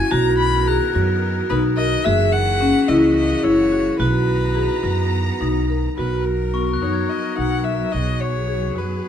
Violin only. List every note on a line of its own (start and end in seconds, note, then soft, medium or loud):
0.00 0.12 G#5 medium
0.11 0.37 A#5 loud
0.38 0.69 B5 medium
0.67 0.95 A#5 medium
1.50 1.62 B4 medium
1.77 2.06 D#5 loud
2.04 2.34 E5 loud
2.32 2.89 F#5 loud
2.88 3.15 D#5 medium
3.16 3.46 D#5 medium
3.44 3.99 C#5 medium
3.99 5.36 B4 medium
5.97 6.26 B4 medium
6.25 6.84 A#4 medium
6.82 7.11 C#5 medium
7.09 7.37 D#5 medium
7.38 7.65 F#5 medium
7.64 7.93 E5 medium
7.92 8.22 D#5 medium
8.21 8.79 C#5 medium
8.77 9.08 B4 medium